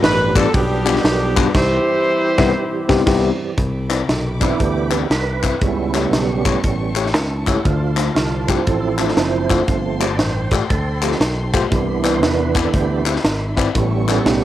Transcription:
Already playing: tine electric piano G2, tonewheel organ F3 G3 B3 D4 G4
0.02 fingered electric bass A1, horn section B4, snare, ride
0.35 tine electric piano G3 B3 D4 F4 D5, horn section A4, kick, clap, ride
0.54 fingered electric bass B1, horn section B3 D4 G4, kick, ride
0.85 tine electric piano G3 B3 D4 F4 G4, clap, ride
0.96 snare
1.04 fingered electric bass B1, snare, ride
1.36 tine electric piano G3 B3 D4 F4 B4, kick, clap, ride
1.54 fingered electric bass C2, tonewheel organ D3 G3 C4 G4, horn section E4 G4 C5, kick, snare, crash
1.60 tonewheel organ E3
2.38 fingered electric bass C2, tine electric piano G3 B3 C4 E4 B4, kick, snare
2.89 fingered electric bass C2, tine electric piano G3 B3 C4 E4 G4, kick, snare
3.06 fingered electric bass C2, tine electric piano G3 B3 C4 E4 G4, kick, snare, crash
3.57 fingered electric bass C2, tine electric piano C3, string section E5 G5 B5 D6, kick, closed hi-hat
3.89 tine electric piano C4 E4 B4 D5, snare, clap, closed hi-hat
4.09 fingered electric bass B1, snare, closed hi-hat
4.40 tonewheel organ E3 B3 D4 E4, tine electric piano C4 E4 B4 D5, kick, clap, closed hi-hat
4.60 fingered electric bass D2, tonewheel organ G4, kick, closed hi-hat
4.91 tine electric piano C4 E4 B4 D5, clap, closed hi-hat
5.10 fingered electric bass C2, tonewheel organ B4, snare, closed hi-hat
5.43 tine electric piano C4 E4 B4 E5, kick, clap, closed hi-hat
5.61 fingered electric bass C#2, tine electric piano C#3, tonewheel organ G3 B3 C#4 E4, string section G5 A5 C#6, kick, closed hi-hat
5.95 tine electric piano A3 E4 G4 C#5, snare, clap, closed hi-hat
6.11 fingered electric bass B1, tonewheel organ G4, snare, closed hi-hat
6.45 tine electric piano A3 E4 G4 C#5, kick, clap, closed hi-hat
6.63 fingered electric bass A1, tonewheel organ G3 B3 C#4, kick, closed hi-hat
6.96 tine electric piano A3 E4 G4 C#5, clap, closed hi-hat
7.06 snare
7.13 fingered electric bass C#2, snare, closed hi-hat
7.47 tine electric piano A3 E4 G4 C#5, tonewheel organ E4, kick, clap, closed hi-hat
7.65 fingered electric bass D2, tine electric piano D3, tonewheel organ F4, string section C5 D5 C6, kick, closed hi-hat
7.97 tine electric piano A3 D4 F4 C5, snare, clap, closed hi-hat
8.15 fingered electric bass C2, tonewheel organ F4, snare, closed hi-hat
8.47 tonewheel organ F3 C4 E4, tine electric piano A3 D4 F4 G4, kick, clap, closed hi-hat
8.65 fingered electric bass A1, tonewheel organ A4, kick, closed hi-hat
8.99 tine electric piano A3 D4 F4 C5, clap, closed hi-hat
9.09 snare
9.17 fingered electric bass F#1, tonewheel organ C5, snare, closed hi-hat
9.50 tine electric piano A3 D4 F4 C5, kick, clap, closed hi-hat
9.67 fingered electric bass G1, tine electric piano G2, tonewheel organ F3 A3 C4, string section G5, kick, closed hi-hat
10.00 tine electric piano A3 F4 G4 C5, tonewheel organ D5, clap, closed hi-hat
10.18 fingered electric bass A1, tonewheel organ C5, snare, closed hi-hat
10.51 tine electric piano A3 F4 G4 D5, tonewheel organ A4, kick, clap, closed hi-hat
10.69 fingered electric bass D2, tonewheel organ A4, kick, closed hi-hat
11.02 tonewheel organ F3 A3 C4, tine electric piano A3 F4 G4 C5, clap, closed hi-hat
11.12 snare
11.20 fingered electric bass B1, snare, closed hi-hat
11.54 tine electric piano A3 F4 G4 C5, kick, clap, closed hi-hat
11.70 fingered electric bass C2, tine electric piano C3, tonewheel organ E3 B3 D4, string section D5 E5 B5, kick, closed hi-hat
12.04 tine electric piano C4 E4 B4 D5, tonewheel organ C5, snare, clap, closed hi-hat
12.22 fingered electric bass E2, tonewheel organ B4, snare, closed hi-hat
12.55 tine electric piano C4 E4 B4 D5, tonewheel organ A4, kick, clap, closed hi-hat
12.74 fingered electric bass D2, tonewheel organ E3 B3 D4 G4, kick, closed hi-hat
13.06 tine electric piano C4 E4 B4 E5, clap, closed hi-hat
13.16 snare
13.24 fingered electric bass G#1, snare, closed hi-hat
13.57 tine electric piano C4 E4 B4 D5, kick, clap, closed hi-hat
13.74 fingered electric bass A1, tine electric piano A2, tonewheel organ G3 B3 C#4, string section G5 A5 C#6, kick, closed hi-hat
14.08 tine electric piano A3 E4 G4 C#5, tonewheel organ A4, snare, clap, closed hi-hat
14.25 fingered electric bass B1, tonewheel organ G4, snare, closed hi-hat

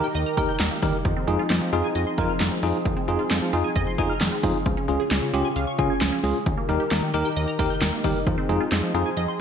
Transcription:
Already playing: analog synth pad D#3 D#4 G4 A#4
0.04 synth arpeggio sound G5
0.15 analog synth bass D#2, synth arpeggio sound D#5, closed hi-hat
0.26 synth arpeggio sound A#5
0.37 analog synth bass D#2, tine electric piano D#4 G4 A#4, synth arpeggio sound G5, kick, closed hi-hat
0.49 synth arpeggio sound G6
0.60 analog synth bass D#2, synth arpeggio sound D#3, snare, clap, closed hi-hat
0.71 synth arpeggio sound A#3
0.83 analog synth bass D#2, synth arpeggio sound G3, tine electric piano D#4 G4 A#4, kick, open hi-hat
1.05 analog synth bass F2, synth arpeggio sound D#3, analog synth pad F3 C4 G#4, kick, closed hi-hat
1.17 synth arpeggio sound C4
1.28 analog synth bass F2, synth arpeggio sound G#3, tine electric piano D#4 F4 G#4, closed hi-hat
1.39 synth arpeggio sound F4
1.50 analog synth bass F2, synth arpeggio sound C4, snare, clap, closed hi-hat
1.62 analog synth bass F3
1.73 analog synth bass F2, tine electric piano D#4 F4 G#4, synth arpeggio sound F4, closed hi-hat
1.84 synth arpeggio sound G#5
1.95 analog synth bass F2, synth arpeggio sound D#5, closed hi-hat
2.07 synth arpeggio sound C6
2.18 analog synth bass F2, tine electric piano D#4 F4 A#4, synth arpeggio sound G#5, kick, closed hi-hat
2.29 synth arpeggio sound F6
2.40 analog synth bass F2, synth arpeggio sound D#3, snare, clap, closed hi-hat
2.52 synth arpeggio sound C4
2.63 analog synth bass F2, synth arpeggio sound G#3, tine electric piano D#4 F4 G#4, open hi-hat
2.85 analog synth bass F2, synth arpeggio sound D#3, kick, closed hi-hat
2.97 synth arpeggio sound C4
3.08 analog synth bass F2, synth arpeggio sound G#3, tine electric piano D#4 F4 G#4, closed hi-hat
3.19 synth arpeggio sound F4
3.30 analog synth bass F2, synth arpeggio sound C4, snare, clap, closed hi-hat
3.42 analog synth bass F3
3.53 analog synth bass F2, tine electric piano D#4 F4 G#4, synth arpeggio sound F4, closed hi-hat
3.64 synth arpeggio sound G#5
3.76 analog synth bass F2, synth arpeggio sound D#5, kick, closed hi-hat
3.87 synth arpeggio sound C6
3.98 analog synth bass F2, tine electric piano D#4 F4 G#4, synth arpeggio sound G#5, kick, closed hi-hat
4.10 synth arpeggio sound F6
4.21 analog synth bass F2, synth arpeggio sound D#3, snare, clap, closed hi-hat
4.32 synth arpeggio sound C4
4.43 analog synth bass F2, synth arpeggio sound G#3, tine electric piano D#4 F4 G#4, kick, open hi-hat
4.66 analog synth bass C#2, analog synth pad C#3 C#4 F4, synth arpeggio sound F3, kick, closed hi-hat
4.77 synth arpeggio sound C#4
4.88 analog synth bass C#2, synth arpeggio sound G#3, tine electric piano C#4 F4 G#4, closed hi-hat
5.00 synth arpeggio sound G#4
5.11 analog synth bass C#2, synth arpeggio sound C#4, snare, clap, closed hi-hat
5.22 analog synth bass C#3
5.33 analog synth bass C#2, tine electric piano C#4 F4 G4, synth arpeggio sound G#4, closed hi-hat
5.45 synth arpeggio sound G#5
5.56 analog synth bass C#2, synth arpeggio sound F5, closed hi-hat
5.67 synth arpeggio sound C#6
5.79 analog synth bass C#2, tine electric piano C#4 F4 G#4, synth arpeggio sound G#5, kick, closed hi-hat
5.90 synth arpeggio sound G#6
6.01 analog synth bass C#2, synth arpeggio sound F3, snare, clap, closed hi-hat
6.12 synth arpeggio sound C#4
6.24 analog synth bass C#2, synth arpeggio sound G#3, tine electric piano C#4 F4 G#4, open hi-hat
6.46 analog synth bass D#2, synth arpeggio sound D#3, analog synth pad D#3 D#4 G4 A#4, kick, closed hi-hat
6.58 synth arpeggio sound A#3
6.69 analog synth bass D#2, synth arpeggio sound G3, tine electric piano D#4 G4 A#4, closed hi-hat
6.80 synth arpeggio sound G4
6.91 analog synth bass D#2, synth arpeggio sound A#3, snare, clap, closed hi-hat
7.03 analog synth bass D#3
7.14 analog synth bass D#2, tine electric piano D#4 G4 A#4, synth arpeggio sound G4, closed hi-hat
7.25 synth arpeggio sound G5
7.36 analog synth bass D#2, synth arpeggio sound D#5, closed hi-hat
7.48 synth arpeggio sound A#5
7.59 analog synth bass D#2, tine electric piano D#4 G4 A#4, synth arpeggio sound G5, kick, closed hi-hat
7.70 synth arpeggio sound G6
7.82 analog synth bass D#2, synth arpeggio sound D#3, snare, clap, closed hi-hat
7.93 synth arpeggio sound A#3
8.04 analog synth bass D#2, synth arpeggio sound G3, tine electric piano D#4 G4 A#4, kick, open hi-hat
8.27 analog synth bass F2, synth arpeggio sound D#3, analog synth pad F3 C4 G#4, kick, closed hi-hat
8.38 synth arpeggio sound C4
8.49 analog synth bass F2, synth arpeggio sound G#3, tine electric piano D#4 F4 G#4, closed hi-hat
8.60 synth arpeggio sound F4
8.72 analog synth bass F2, synth arpeggio sound C4, snare, clap, closed hi-hat
8.83 analog synth bass F3
8.94 analog synth bass F2, tine electric piano D#4 F4 G#4, synth arpeggio sound F4, closed hi-hat
9.06 synth arpeggio sound G#5
9.17 analog synth bass F2, synth arpeggio sound D#5, closed hi-hat
9.28 synth arpeggio sound C6

